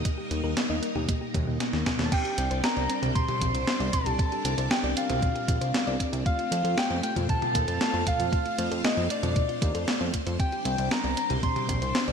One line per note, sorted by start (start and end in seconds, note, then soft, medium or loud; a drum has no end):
0.00 2.08 G3 medium
0.00 2.08 A#3 medium
0.00 2.08 D#4 medium
0.00 2.08 A#4 medium
0.00 2.08 D#5 loud
0.05 0.10 A#3 medium
0.05 kick loud
0.05 closed hi-hat medium
0.18 0.23 G4 medium
0.31 0.42 D#2 medium
0.31 0.36 A#3 medium
0.31 closed hi-hat medium
0.44 0.55 D#2 medium
0.44 0.52 A#4 loud
0.57 0.65 A#3 medium
0.57 snare loud
0.57 closed hi-hat medium
0.70 0.81 D#2 medium
0.70 0.75 D#5 loud
0.82 0.87 A#3 loud
0.82 closed hi-hat medium
0.96 1.07 D#2 medium
0.96 1.04 G4 loud
0.96 mid tom medium
1.08 1.13 A#3 medium
1.08 kick loud
1.08 closed hi-hat medium
1.21 1.26 G4 medium
1.34 1.46 D#2 medium
1.34 1.39 D#4 medium
1.34 kick loud
1.34 closed hi-hat medium
1.34 mid tom loud
1.47 1.58 D#2 medium
1.47 1.55 A#3 loud
1.60 1.65 A#3 medium
1.60 snare medium
1.60 closed hi-hat medium
1.73 1.84 D#2 medium
1.73 1.81 A#3 medium
1.73 snare medium
1.86 1.91 A#4 medium
1.86 kick medium
1.86 snare medium
1.86 closed hi-hat medium
1.86 mid tom medium
1.99 2.10 D#2 medium
1.99 2.04 A#3 loud
1.99 snare medium
2.05 2.14 A5 medium
2.12 6.22 G3 medium
2.12 2.17 C4 medium
2.12 10.36 C4 medium
2.12 6.22 D4 medium
2.12 4.17 C5 medium
2.12 6.22 D5 loud
2.12 2.60 G5 loud
2.12 2.65 G5 loud
2.12 kick loud
2.12 closed hi-hat medium
2.12 crash loud
2.25 2.30 G4 medium
2.25 closed hi-hat soft
2.38 2.49 C2 medium
2.38 2.43 C4 medium
2.38 closed hi-hat loud
2.51 2.62 C2 medium
2.51 2.59 C5 loud
2.51 closed hi-hat medium
2.63 2.72 C4 medium
2.63 3.12 A#5 loud
2.63 3.15 A#5 loud
2.63 snare loud
2.63 closed hi-hat medium
2.77 2.88 C2 medium
2.77 2.82 D5 loud
2.77 closed hi-hat soft
2.90 2.94 C4 loud
2.90 closed hi-hat medium
3.03 3.14 C2 medium
3.03 3.11 G4 loud
3.03 closed hi-hat medium
3.03 mid tom loud
3.15 3.20 C4 medium
3.15 3.89 C6 loud
3.15 3.95 C6 loud
3.15 kick loud
3.15 closed hi-hat medium
3.29 3.33 G4 medium
3.29 closed hi-hat soft
3.29 mid tom loud
3.41 3.52 A#1 loud
3.41 3.46 C4 medium
3.41 kick medium
3.41 closed hi-hat loud
3.54 3.65 C2 medium
3.54 3.62 C5 loud
3.54 closed hi-hat medium
3.67 3.75 C4 medium
3.67 snare loud
3.67 closed hi-hat medium
3.80 3.91 C2 medium
3.80 3.85 D5 loud
3.80 closed hi-hat soft
3.93 3.98 C4 loud
3.93 4.73 A5 loud
3.93 4.67 A5 loud
3.93 kick loud
3.93 closed hi-hat loud
3.93 mid tom medium
4.06 4.17 C2 medium
4.06 4.14 G4 loud
4.06 closed hi-hat medium
4.19 4.24 C4 medium
4.19 6.24 A#4 medium
4.19 kick loud
4.19 closed hi-hat medium
4.32 4.37 G4 medium
4.32 closed hi-hat soft
4.45 4.56 C2 medium
4.45 4.50 C4 medium
4.45 closed hi-hat loud
4.58 4.69 C2 medium
4.58 4.66 C5 medium
4.58 closed hi-hat medium
4.71 4.79 C4 medium
4.71 4.95 G5 medium
4.71 4.98 G5 loud
4.71 snare loud
4.71 closed hi-hat medium
4.83 4.95 C2 medium
4.83 4.89 D5 loud
4.83 closed hi-hat soft
4.97 5.01 C4 loud
4.97 5.96 F5 medium
4.97 6.00 F5 medium
4.97 closed hi-hat loud
5.09 5.21 C2 medium
5.09 5.18 G4 loud
5.09 closed hi-hat medium
5.09 mid tom loud
5.22 5.27 C4 medium
5.22 kick loud
5.22 closed hi-hat medium
5.35 5.40 G4 medium
5.35 closed hi-hat soft
5.48 5.59 A#1 loud
5.48 5.53 C4 medium
5.48 kick loud
5.48 closed hi-hat loud
5.61 5.72 C2 medium
5.61 5.69 C5 loud
5.61 closed hi-hat medium
5.74 5.82 C4 medium
5.74 snare loud
5.74 closed hi-hat medium
5.87 5.98 C2 medium
5.87 5.92 D5 loud
5.87 closed hi-hat soft
6.00 6.05 C4 loud
6.00 kick medium
6.00 closed hi-hat loud
6.13 6.24 C2 medium
6.13 6.21 G4 loud
6.13 closed hi-hat medium
6.26 6.31 A3 medium
6.26 10.36 A3 medium
6.26 10.36 F4 medium
6.26 12.12 C5 medium
6.26 6.74 F5 loud
6.26 6.79 F5 loud
6.26 10.36 F5 loud
6.26 kick loud
6.26 closed hi-hat medium
6.38 6.43 F4 medium
6.38 closed hi-hat soft
6.51 6.63 F2 medium
6.51 6.56 A3 medium
6.51 closed hi-hat loud
6.64 6.76 F2 medium
6.64 6.73 A4 loud
6.64 closed hi-hat medium
6.77 6.85 A3 medium
6.77 7.03 G5 loud
6.77 7.02 G5 loud
6.77 snare loud
6.77 closed hi-hat medium
6.90 7.01 F2 medium
6.90 6.95 C5 loud
6.90 closed hi-hat soft
7.03 7.08 A3 loud
7.03 7.15 G5 loud
7.03 closed hi-hat medium
7.16 7.27 F2 medium
7.16 7.24 F4 loud
7.16 closed hi-hat medium
7.16 mid tom medium
7.29 7.34 A3 medium
7.29 8.03 A5 loud
7.29 8.09 A5 loud
7.29 kick loud
7.29 closed hi-hat medium
7.42 7.47 F4 medium
7.42 closed hi-hat soft
7.42 mid tom medium
7.55 7.66 D#2 loud
7.55 7.60 A3 medium
7.55 kick medium
7.55 closed hi-hat loud
7.68 7.79 F2 medium
7.68 7.76 A4 loud
7.68 closed hi-hat medium
7.81 7.89 A3 medium
7.81 snare loud
7.81 closed hi-hat medium
7.94 8.05 F2 medium
7.94 7.99 C5 loud
7.94 closed hi-hat soft
8.07 8.12 A3 loud
8.07 8.84 F5 loud
8.07 8.81 F5 loud
8.07 kick loud
8.07 closed hi-hat loud
8.07 mid tom medium
8.19 8.31 F2 medium
8.19 8.28 F4 loud
8.19 closed hi-hat medium
8.32 8.38 A3 medium
8.32 kick loud
8.32 closed hi-hat medium
8.46 8.50 F4 medium
8.46 closed hi-hat soft
8.58 8.70 F2 loud
8.58 8.63 A3 medium
8.58 closed hi-hat loud
8.71 8.82 F2 medium
8.71 8.79 A4 loud
8.71 closed hi-hat medium
8.84 8.92 A3 medium
8.84 9.09 D#5 loud
8.84 9.09 D#5 medium
8.84 snare loud
8.84 closed hi-hat medium
8.97 9.08 F2 medium
8.97 9.02 C5 loud
8.97 closed hi-hat soft
9.10 9.15 A3 loud
9.10 10.10 D5 medium
9.10 closed hi-hat medium
9.23 9.34 F2 medium
9.23 9.31 F4 loud
9.23 closed hi-hat medium
9.23 mid tom medium
9.36 9.41 A3 medium
9.36 kick loud
9.36 closed hi-hat medium
9.49 9.54 F4 medium
9.49 closed hi-hat soft
9.62 9.73 D#2 loud
9.62 9.67 A3 medium
9.62 kick loud
9.62 closed hi-hat loud
9.75 9.86 F2 medium
9.75 9.83 A4 loud
9.75 closed hi-hat medium
9.88 9.96 A3 medium
9.88 snare loud
9.88 closed hi-hat medium
10.01 10.12 F2 medium
10.01 10.06 C5 loud
10.01 closed hi-hat soft
10.14 10.19 A3 loud
10.14 kick medium
10.14 closed hi-hat medium
10.27 10.38 F2 medium
10.27 10.35 F4 loud
10.27 closed hi-hat medium
10.39 12.12 G3 medium
10.39 12.12 C4 medium
10.39 10.44 C4 medium
10.39 12.12 D4 medium
10.39 12.12 D5 loud
10.39 10.93 G5 loud
10.39 10.88 G5 loud
10.39 kick loud
10.39 closed hi-hat medium
10.52 10.57 G4 medium
10.52 closed hi-hat soft
10.65 10.76 C2 medium
10.65 10.70 C4 medium
10.65 closed hi-hat medium
10.78 10.89 C2 medium
10.78 10.86 C5 loud
10.78 closed hi-hat medium
10.91 10.99 C4 medium
10.91 11.40 A#5 medium
10.91 11.43 A#5 loud
10.91 snare loud
10.91 closed hi-hat medium
11.04 11.15 C2 medium
11.04 11.09 D5 loud
11.04 closed hi-hat soft
11.17 11.22 C4 loud
11.17 closed hi-hat medium
11.30 11.41 C2 medium
11.30 11.38 G4 loud
11.30 closed hi-hat medium
11.30 mid tom medium
11.43 11.48 C4 medium
11.43 12.12 C6 loud
11.43 kick loud
11.43 closed hi-hat medium
11.56 11.61 G4 medium
11.56 closed hi-hat soft
11.56 mid tom medium
11.69 11.80 A#1 loud
11.69 11.74 C4 medium
11.69 kick medium
11.69 closed hi-hat medium
11.82 11.93 C2 medium
11.82 11.90 C5 loud
11.82 closed hi-hat medium
11.95 12.03 C4 medium
11.95 snare loud
11.95 closed hi-hat medium
12.08 12.12 C2 medium
12.08 12.12 D5 loud
12.08 closed hi-hat soft